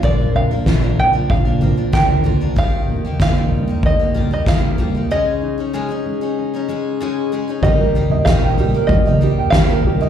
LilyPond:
<<
  \new Staff \with { instrumentName = "Five-string banjo" } { \time 4/4 \key ees \lydian \tempo 4 = 95 d''8 f''4 g''8 f''4 g''4 | f''4 f''4 ees''8. ees''16 f''4 | ees''2. r4 | ees''4 f''4 ees''4 f''4 | }
  \new Staff \with { instrumentName = "Upright piano" } { \time 4/4 \key ees \lydian r1 | r1 | r1 | g'16 bes'8 ees''16 g'16 g''16 g'16 bes'16 g'16 ees''16 g'16 g''16 g'16 bes'16 g'16 ees''16 | }
  \new Staff \with { instrumentName = "Steel-string acoustic guitar" } { \time 4/4 \key ees \lydian <bes, d f bes d' bes'>8. <f bes d' bes'>16 <bes, d f bes d' bes'>16 <f bes d' bes'>8 <f bes d' bes'>8 <f bes d' bes'>16 <f bes d' bes'>16 <f bes d' bes'>16 <bes, d f bes d' bes'>8 <f bes d' bes'>16 <f bes d' bes'>16 | <ees f bes ees' g'>8. <bes ees' g'>16 <ees f bes ees' g'>16 <bes ees' g'>8 <bes ees' g'>8 <bes ees' g'>16 <f bes ees' g'>16 <bes ees' g'>16 <ees f bes ees' g'>8 <f bes ees' g'>16 <bes ees' g'>16 | <des aes des' ees' aes'>8. <des' ees' aes'>16 <des aes des' ees' aes'>16 <des' ees' aes'>8 <des' ees' aes'>8 <des' ees' aes'>16 <aes des' ees' aes'>8 <des aes des' ees' aes'>8 <aes des' ees' aes'>16 <des' ees' aes'>16 | <ees g bes ees' g'>8 <g bes ees' g'>8 <ees g bes ees' g'>8 <g bes ees' g'>16 <bes ees' g'>8 <bes ees' g'>16 <g bes ees' g'>8 <ees g bes ees' g'>16 <bes ees' g'>8 <bes ees' g'>16 | }
  \new Staff \with { instrumentName = "Steel-string acoustic guitar" } { \time 4/4 \key ees \lydian << { r8 d'8 f'4 d'4 d'8 f'8 | r8 bes8 f'4 bes4 bes8 f'8 | r8 ees'8 aes'4 ees'4 ees'8 aes'8 | <g bes g' bes'>4 bes4. g'4 bes8 | } \\ { <bes, f>4. f4 f4. | ees4. g4 g4. | des4. aes4 aes4. | ees8 g4 g8 bes,4 g4 | } >> }
  \new Staff \with { instrumentName = "Fingered electric bass" } { \clef bass \time 4/4 \key ees \lydian bes,,4 bes,,4 bes,,4 d,4 | ees,4 ees,4 ees,4 ees,4 | r1 | ees,4 bes,,4 ees,4 ees,4 | }
  \new DrumStaff \with { instrumentName = "Drums" } \drummode { \time 4/4 <bd tomfh>8 tomfh8 <bd sn tomfh>8 tomfh8 <bd tomfh>8 tomfh8 <bd sn tomfh>8 tomfh8 | <bd tomfh>8 tomfh8 <bd sn tomfh>8 tomfh8 <bd tomfh>8 tomfh8 <bd sn tomfh>8 tomfh8 | r4 r4 r4 r4 | <bd tomfh>8. tomfh16 <bd sn>8 tomfh8 <bd tomfh>4 <bd sn>8 tomfh8 | }
>>